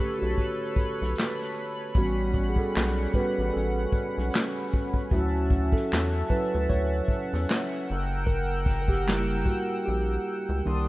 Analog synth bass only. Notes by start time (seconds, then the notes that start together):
0.22 B1
0.77 B1
1.02 B1
1.96 A1
2.77 B1
3.38 A1
3.56 A1
4.18 B1
5.12 D2
5.93 E2
6.55 D2
6.71 D2
7.33 E2
7.90 F#1
9.88 A#1
10.49 C#2
10.66 C2